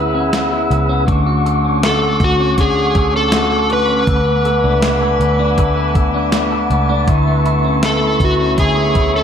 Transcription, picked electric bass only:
0.00 0.67 D2 medium
0.71 1.06 C#2 medium
1.08 2.16 D2 medium
2.20 2.91 D2 medium
2.95 4.04 D2 medium
4.07 4.61 D2 medium
4.64 5.17 C#2 medium
5.20 5.56 D2 medium
5.58 6.66 D2 medium
6.70 7.06 C#2 medium
7.08 8.16 D2 medium
8.20 8.91 D2 medium
8.96 9.23 D2 medium

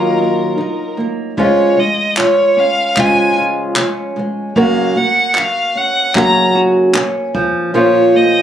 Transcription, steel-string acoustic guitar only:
0.00 0.57 D#3 medium
0.00 0.59 F#3 medium
0.00 0.59 A#3 medium
0.00 0.59 D#4 medium
0.00 0.61 F4 medium
0.58 0.90 D#3 medium
0.58 0.91 F#3 medium
0.97 1.30 D#3 soft
0.97 1.31 F#3 medium
1.38 1.76 C#3 medium
1.38 1.78 F3 medium
1.38 1.78 G#3 medium
1.38 1.78 C#4 medium
1.38 1.79 F4 medium
1.77 2.09 C#3 soft
1.77 2.11 F3 soft
2.17 2.49 C#3 soft
2.17 2.50 F3 medium
2.97 3.75 C#3 medium
2.97 3.77 F3 medium
2.97 3.77 G#3 medium
2.97 4.57 C#4 medium
2.97 3.78 F4 medium
3.77 4.09 C#3 medium
3.77 4.10 F3 medium
4.17 4.48 C#3 soft
4.17 4.50 F3 medium
4.56 4.94 F#2 medium
4.56 4.96 C#3 medium
4.56 4.97 F#3 medium
4.56 4.97 A#3 medium
4.56 4.97 C#4 medium
4.56 4.97 F#4 medium
4.95 5.28 F#2 soft
4.95 5.29 C#3 soft
4.95 5.29 F#3 soft
5.35 5.68 F#2 soft
5.35 5.68 C#3 soft
5.35 5.69 F#3 medium
6.15 6.93 F#2 medium
6.15 6.94 C#3 medium
6.15 6.95 F#3 medium
6.15 7.75 A#3 medium
6.15 7.75 C#4 medium
6.15 6.96 F#4 medium
6.94 7.27 F#2 medium
6.94 7.27 C#3 medium
6.94 7.28 F#3 medium
7.34 7.66 A#2 soft
7.34 7.68 F3 medium
7.74 8.42 A#2 medium
7.74 8.42 F3 medium
7.74 8.42 A#3 medium
7.74 8.42 C#4 medium
7.74 8.42 F4 medium

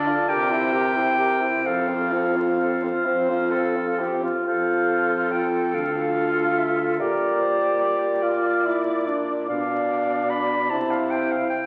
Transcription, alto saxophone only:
0.06 0.27 D5 medium
0.28 0.51 A#4 medium
0.50 0.74 C5 medium
0.73 0.97 A#4 medium
0.96 1.18 C5 soft
1.18 1.43 A#4 soft
1.42 1.65 C5 soft
1.65 1.91 A4 soft
1.90 2.15 C5 soft
2.13 2.39 A4 soft
2.37 2.59 C5 soft
2.59 2.84 A4 soft
2.83 3.05 C5 soft
3.06 3.52 C5 medium
3.50 4.00 A4 medium
3.99 4.31 G4 soft
4.44 6.95 A4 soft
6.97 7.41 A#4 soft
7.40 7.81 C5 soft
7.80 9.48 D5 soft
9.49 10.70 D5 soft
10.69 11.61 C5 soft

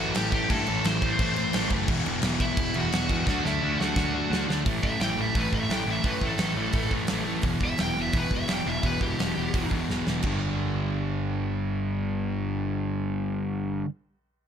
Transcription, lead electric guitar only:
0.00 0.14 F#4 medium
0.00 0.16 F#5 medium
0.17 0.32 G4 medium
0.17 0.32 G5 medium
0.33 0.50 G4 medium
0.33 0.51 G5 medium
0.50 0.83 A4 medium
0.50 0.86 A5 loud
0.87 1.68 C5 medium
0.87 1.68 C6 medium
2.42 2.74 E4 medium
2.42 2.75 E5 loud
2.77 3.25 F#4 medium
2.77 3.26 F#5 loud
3.27 3.43 F#4 medium
3.27 3.45 F#5 loud
3.45 3.77 E4 medium
3.45 3.77 E5 loud
3.79 4.45 F#4 medium
3.79 4.45 F#5 loud
4.84 5.01 E5 loud
5.01 5.18 G5 medium
5.22 5.37 E5 medium
5.36 5.53 B4 medium
5.54 5.71 E5 loud
5.72 5.88 G5 medium
5.91 6.07 E5 medium
6.05 6.22 B4 medium
6.26 6.92 A4 loud
7.65 7.80 E5 loud
7.81 7.97 G5 medium
8.02 8.17 E5 medium
8.17 8.32 B4 loud
8.35 8.50 E5 loud
8.52 8.67 G5 medium
8.67 8.84 E5 medium
8.86 9.01 B4 medium
9.02 9.70 G4 medium

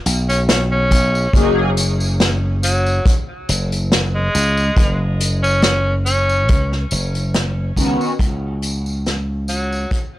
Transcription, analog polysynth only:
1.34 1.70 F#3 medium
1.34 1.70 A#3 medium
1.34 1.70 D#4 medium
1.34 1.70 G#4 loud
7.76 8.12 D#3 medium
7.76 8.13 B3 medium
7.76 8.13 C#4 medium
7.76 8.13 F#4 medium

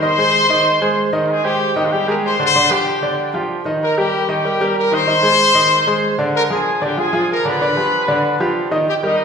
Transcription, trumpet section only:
0.00 1.09 C5 loud
0.00 1.09 C6 medium
1.26 1.44 G#4 medium
1.26 1.29 A#4 medium
1.31 1.45 G#5 medium
1.45 1.75 G4 medium
1.45 1.76 G5 medium
1.76 1.82 G4 medium
1.76 1.83 G5 medium
1.84 1.90 F4 medium
1.90 2.08 G4 medium
1.90 2.08 G5 medium
2.08 2.15 A#4 medium
2.08 2.16 A#5 medium
2.23 2.43 C5 medium
2.23 2.44 C6 medium
2.45 2.69 C5 loud
2.45 2.70 C6 medium
2.71 3.39 G4 medium
2.71 3.39 G5 medium
3.82 3.96 A#4 medium
3.82 3.97 A#5 medium
3.98 4.28 G4 medium
3.98 4.29 G5 medium
4.29 4.73 G4 medium
4.29 4.74 G5 medium
4.78 4.93 A#4 medium
4.78 4.93 A#5 medium
4.93 6.19 C5 loud
4.93 6.20 C6 medium
6.35 6.42 A#4 loud
6.35 6.42 A#5 medium
6.52 6.80 G#4 medium
6.52 6.80 G#5 medium
6.83 6.98 G4 medium
6.83 6.98 G5 medium
6.99 7.30 G#4 medium
6.99 7.30 G#5 medium
7.31 7.45 A#4 medium
7.31 7.45 A#5 medium
7.47 8.57 B4 medium
7.47 8.57 B5 medium
8.89 8.96 G4 medium
8.89 8.96 G5 medium
9.04 9.25 D#4 medium
9.04 9.25 D#5 medium

